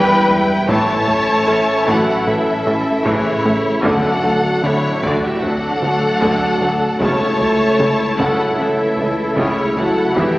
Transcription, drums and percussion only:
0, 0, Header, 1, 2, 480
1, 0, Start_track
1, 0, Tempo, 789474
1, 420, Time_signature, 4, 2, 24, 8
1, 6315, End_track
2, 0, Start_track
2, 0, Title_t, "Taiko and cinematic ensemble drums"
2, 421, Note_on_c, 9, 41, 101
2, 482, Note_off_c, 9, 41, 0
2, 660, Note_on_c, 9, 43, 47
2, 721, Note_off_c, 9, 43, 0
2, 1141, Note_on_c, 9, 41, 79
2, 1202, Note_off_c, 9, 41, 0
2, 1862, Note_on_c, 9, 41, 82
2, 1922, Note_off_c, 9, 41, 0
2, 2343, Note_on_c, 9, 41, 100
2, 2404, Note_off_c, 9, 41, 0
2, 2583, Note_on_c, 9, 43, 46
2, 2644, Note_off_c, 9, 43, 0
2, 3062, Note_on_c, 9, 41, 82
2, 3123, Note_off_c, 9, 41, 0
2, 3784, Note_on_c, 9, 41, 81
2, 3845, Note_off_c, 9, 41, 0
2, 4265, Note_on_c, 9, 41, 96
2, 4326, Note_off_c, 9, 41, 0
2, 4505, Note_on_c, 9, 43, 44
2, 4566, Note_off_c, 9, 43, 0
2, 4984, Note_on_c, 9, 41, 72
2, 5045, Note_off_c, 9, 41, 0
2, 5704, Note_on_c, 9, 41, 79
2, 5764, Note_off_c, 9, 41, 0
2, 6181, Note_on_c, 9, 41, 96
2, 6242, Note_off_c, 9, 41, 0
2, 6315, End_track
0, 0, End_of_file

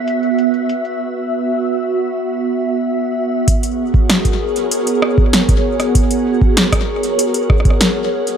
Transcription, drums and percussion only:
0, 0, Header, 1, 2, 480
1, 0, Start_track
1, 0, Key_signature, 5, "minor"
1, 0, Tempo, 618557
1, 778, Time_signature, 4, 2, 24, 8
1, 6497, End_track
2, 0, Start_track
2, 0, Title_t, "Drums"
2, 59, Note_on_c, 9, 42, 87
2, 136, Note_off_c, 9, 42, 0
2, 179, Note_on_c, 9, 42, 37
2, 256, Note_off_c, 9, 42, 0
2, 299, Note_on_c, 9, 42, 63
2, 376, Note_off_c, 9, 42, 0
2, 419, Note_on_c, 9, 42, 36
2, 496, Note_off_c, 9, 42, 0
2, 539, Note_on_c, 9, 42, 87
2, 616, Note_off_c, 9, 42, 0
2, 659, Note_on_c, 9, 42, 36
2, 736, Note_off_c, 9, 42, 0
2, 2698, Note_on_c, 9, 36, 106
2, 2699, Note_on_c, 9, 42, 82
2, 2776, Note_off_c, 9, 36, 0
2, 2776, Note_off_c, 9, 42, 0
2, 2818, Note_on_c, 9, 42, 55
2, 2896, Note_off_c, 9, 42, 0
2, 3058, Note_on_c, 9, 36, 101
2, 3136, Note_off_c, 9, 36, 0
2, 3178, Note_on_c, 9, 37, 53
2, 3178, Note_on_c, 9, 38, 110
2, 3178, Note_on_c, 9, 42, 77
2, 3256, Note_off_c, 9, 37, 0
2, 3256, Note_off_c, 9, 38, 0
2, 3256, Note_off_c, 9, 42, 0
2, 3298, Note_on_c, 9, 36, 81
2, 3298, Note_on_c, 9, 42, 55
2, 3376, Note_off_c, 9, 36, 0
2, 3376, Note_off_c, 9, 42, 0
2, 3538, Note_on_c, 9, 42, 39
2, 3616, Note_off_c, 9, 42, 0
2, 3658, Note_on_c, 9, 42, 78
2, 3736, Note_off_c, 9, 42, 0
2, 3779, Note_on_c, 9, 42, 57
2, 3856, Note_off_c, 9, 42, 0
2, 3898, Note_on_c, 9, 37, 80
2, 3976, Note_off_c, 9, 37, 0
2, 4018, Note_on_c, 9, 36, 117
2, 4096, Note_off_c, 9, 36, 0
2, 4138, Note_on_c, 9, 38, 116
2, 4138, Note_on_c, 9, 42, 84
2, 4216, Note_off_c, 9, 38, 0
2, 4216, Note_off_c, 9, 42, 0
2, 4258, Note_on_c, 9, 36, 121
2, 4258, Note_on_c, 9, 42, 55
2, 4336, Note_off_c, 9, 36, 0
2, 4336, Note_off_c, 9, 42, 0
2, 4498, Note_on_c, 9, 37, 53
2, 4498, Note_on_c, 9, 42, 38
2, 4576, Note_off_c, 9, 37, 0
2, 4576, Note_off_c, 9, 42, 0
2, 4618, Note_on_c, 9, 36, 109
2, 4618, Note_on_c, 9, 42, 83
2, 4696, Note_off_c, 9, 36, 0
2, 4696, Note_off_c, 9, 42, 0
2, 4738, Note_on_c, 9, 42, 55
2, 4816, Note_off_c, 9, 42, 0
2, 4978, Note_on_c, 9, 36, 109
2, 5056, Note_off_c, 9, 36, 0
2, 5098, Note_on_c, 9, 38, 117
2, 5098, Note_on_c, 9, 42, 81
2, 5176, Note_off_c, 9, 38, 0
2, 5176, Note_off_c, 9, 42, 0
2, 5218, Note_on_c, 9, 36, 81
2, 5219, Note_on_c, 9, 37, 76
2, 5219, Note_on_c, 9, 42, 53
2, 5296, Note_off_c, 9, 36, 0
2, 5296, Note_off_c, 9, 37, 0
2, 5296, Note_off_c, 9, 42, 0
2, 5458, Note_on_c, 9, 42, 38
2, 5536, Note_off_c, 9, 42, 0
2, 5578, Note_on_c, 9, 42, 82
2, 5656, Note_off_c, 9, 42, 0
2, 5698, Note_on_c, 9, 42, 57
2, 5776, Note_off_c, 9, 42, 0
2, 5818, Note_on_c, 9, 36, 121
2, 5818, Note_on_c, 9, 37, 51
2, 5896, Note_off_c, 9, 36, 0
2, 5896, Note_off_c, 9, 37, 0
2, 5898, Note_on_c, 9, 37, 42
2, 5938, Note_on_c, 9, 36, 122
2, 5938, Note_on_c, 9, 42, 38
2, 5976, Note_off_c, 9, 37, 0
2, 5978, Note_on_c, 9, 37, 33
2, 6016, Note_off_c, 9, 36, 0
2, 6016, Note_off_c, 9, 42, 0
2, 6056, Note_off_c, 9, 37, 0
2, 6058, Note_on_c, 9, 38, 123
2, 6058, Note_on_c, 9, 42, 86
2, 6136, Note_off_c, 9, 38, 0
2, 6136, Note_off_c, 9, 42, 0
2, 6418, Note_on_c, 9, 42, 39
2, 6496, Note_off_c, 9, 42, 0
2, 6497, End_track
0, 0, End_of_file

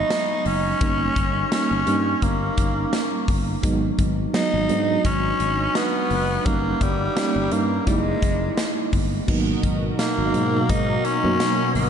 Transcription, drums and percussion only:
0, 0, Header, 1, 2, 480
1, 0, Start_track
1, 0, Key_signature, 5, "minor"
1, 0, Tempo, 705882
1, 552, Time_signature, 4, 2, 24, 8
1, 8089, End_track
2, 0, Start_track
2, 0, Title_t, "Drums"
2, 71, Note_on_c, 9, 38, 97
2, 72, Note_on_c, 9, 42, 76
2, 139, Note_off_c, 9, 38, 0
2, 140, Note_off_c, 9, 42, 0
2, 310, Note_on_c, 9, 46, 66
2, 378, Note_off_c, 9, 46, 0
2, 550, Note_on_c, 9, 42, 94
2, 552, Note_on_c, 9, 36, 116
2, 618, Note_off_c, 9, 42, 0
2, 620, Note_off_c, 9, 36, 0
2, 791, Note_on_c, 9, 36, 88
2, 791, Note_on_c, 9, 42, 66
2, 859, Note_off_c, 9, 36, 0
2, 859, Note_off_c, 9, 42, 0
2, 1033, Note_on_c, 9, 38, 104
2, 1033, Note_on_c, 9, 42, 79
2, 1101, Note_off_c, 9, 38, 0
2, 1101, Note_off_c, 9, 42, 0
2, 1270, Note_on_c, 9, 42, 75
2, 1338, Note_off_c, 9, 42, 0
2, 1511, Note_on_c, 9, 42, 76
2, 1512, Note_on_c, 9, 36, 82
2, 1579, Note_off_c, 9, 42, 0
2, 1580, Note_off_c, 9, 36, 0
2, 1751, Note_on_c, 9, 42, 76
2, 1753, Note_on_c, 9, 36, 91
2, 1819, Note_off_c, 9, 42, 0
2, 1821, Note_off_c, 9, 36, 0
2, 1991, Note_on_c, 9, 38, 95
2, 1992, Note_on_c, 9, 42, 73
2, 2059, Note_off_c, 9, 38, 0
2, 2060, Note_off_c, 9, 42, 0
2, 2230, Note_on_c, 9, 46, 66
2, 2232, Note_on_c, 9, 36, 91
2, 2298, Note_off_c, 9, 46, 0
2, 2300, Note_off_c, 9, 36, 0
2, 2470, Note_on_c, 9, 42, 94
2, 2472, Note_on_c, 9, 36, 111
2, 2538, Note_off_c, 9, 42, 0
2, 2540, Note_off_c, 9, 36, 0
2, 2710, Note_on_c, 9, 42, 67
2, 2711, Note_on_c, 9, 36, 88
2, 2778, Note_off_c, 9, 42, 0
2, 2779, Note_off_c, 9, 36, 0
2, 2953, Note_on_c, 9, 38, 108
2, 2953, Note_on_c, 9, 42, 79
2, 3021, Note_off_c, 9, 38, 0
2, 3021, Note_off_c, 9, 42, 0
2, 3191, Note_on_c, 9, 42, 79
2, 3259, Note_off_c, 9, 42, 0
2, 3431, Note_on_c, 9, 42, 73
2, 3432, Note_on_c, 9, 36, 86
2, 3499, Note_off_c, 9, 42, 0
2, 3500, Note_off_c, 9, 36, 0
2, 3672, Note_on_c, 9, 42, 73
2, 3740, Note_off_c, 9, 42, 0
2, 3911, Note_on_c, 9, 38, 100
2, 3912, Note_on_c, 9, 42, 75
2, 3979, Note_off_c, 9, 38, 0
2, 3980, Note_off_c, 9, 42, 0
2, 4150, Note_on_c, 9, 46, 67
2, 4218, Note_off_c, 9, 46, 0
2, 4390, Note_on_c, 9, 42, 94
2, 4392, Note_on_c, 9, 36, 116
2, 4458, Note_off_c, 9, 42, 0
2, 4460, Note_off_c, 9, 36, 0
2, 4630, Note_on_c, 9, 42, 68
2, 4631, Note_on_c, 9, 36, 88
2, 4698, Note_off_c, 9, 42, 0
2, 4699, Note_off_c, 9, 36, 0
2, 4873, Note_on_c, 9, 38, 109
2, 4874, Note_on_c, 9, 42, 83
2, 4941, Note_off_c, 9, 38, 0
2, 4942, Note_off_c, 9, 42, 0
2, 5110, Note_on_c, 9, 42, 79
2, 5178, Note_off_c, 9, 42, 0
2, 5350, Note_on_c, 9, 42, 77
2, 5352, Note_on_c, 9, 36, 92
2, 5418, Note_off_c, 9, 42, 0
2, 5420, Note_off_c, 9, 36, 0
2, 5591, Note_on_c, 9, 42, 71
2, 5593, Note_on_c, 9, 36, 91
2, 5659, Note_off_c, 9, 42, 0
2, 5661, Note_off_c, 9, 36, 0
2, 5831, Note_on_c, 9, 38, 97
2, 5832, Note_on_c, 9, 42, 71
2, 5899, Note_off_c, 9, 38, 0
2, 5900, Note_off_c, 9, 42, 0
2, 6071, Note_on_c, 9, 46, 64
2, 6072, Note_on_c, 9, 36, 89
2, 6139, Note_off_c, 9, 46, 0
2, 6140, Note_off_c, 9, 36, 0
2, 6312, Note_on_c, 9, 36, 114
2, 6312, Note_on_c, 9, 49, 93
2, 6380, Note_off_c, 9, 36, 0
2, 6380, Note_off_c, 9, 49, 0
2, 6551, Note_on_c, 9, 36, 88
2, 6551, Note_on_c, 9, 42, 67
2, 6619, Note_off_c, 9, 36, 0
2, 6619, Note_off_c, 9, 42, 0
2, 6793, Note_on_c, 9, 38, 108
2, 6794, Note_on_c, 9, 42, 81
2, 6861, Note_off_c, 9, 38, 0
2, 6862, Note_off_c, 9, 42, 0
2, 7032, Note_on_c, 9, 42, 76
2, 7100, Note_off_c, 9, 42, 0
2, 7272, Note_on_c, 9, 42, 77
2, 7273, Note_on_c, 9, 36, 88
2, 7340, Note_off_c, 9, 42, 0
2, 7341, Note_off_c, 9, 36, 0
2, 7512, Note_on_c, 9, 42, 75
2, 7580, Note_off_c, 9, 42, 0
2, 7753, Note_on_c, 9, 38, 103
2, 7754, Note_on_c, 9, 42, 73
2, 7821, Note_off_c, 9, 38, 0
2, 7822, Note_off_c, 9, 42, 0
2, 7991, Note_on_c, 9, 46, 69
2, 8059, Note_off_c, 9, 46, 0
2, 8089, End_track
0, 0, End_of_file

